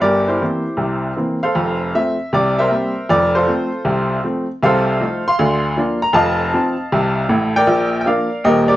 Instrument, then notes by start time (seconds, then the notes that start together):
upright piano
0.00 G1 G2 G4 A#4 D5
0.28 E4 G4 C5
0.41 E3 A#3 C4
0.77 C2 C3
1.17 E3 A#3 C4
1.43 A4 C5 F5
1.55 F1 F2
1.95 F3 A3 C4 E5
2.33 C2 C3 D5
2.59 A#4 C5 E5
2.71 G3 A#3 C4
3.09 F1 F2 D5
3.35 F4 A4 C5
3.47 F3 A3 C4
3.85 C2 C3
4.24 F3 A3 C4
4.63 C2 C3 A4 C5 F5
5.01 F3 A3 D#4
5.28 F5 C6
5.39 D2 D3
5.77 F3 A#3 D4
6.02 A#5
6.13 F1 F2 D#5 F5 A5
6.53 F3 C4 D#4
6.92 C2 C3
7.29 A1 A2
7.56 A#4 D5 G5
7.67 A#1 A#2
8.01 G5
8.06 F3 A#3 D4 A#4 D5 F5
8.44 D#1 D#2 G4 A#4 D#5
8.68 G4 A#4 D5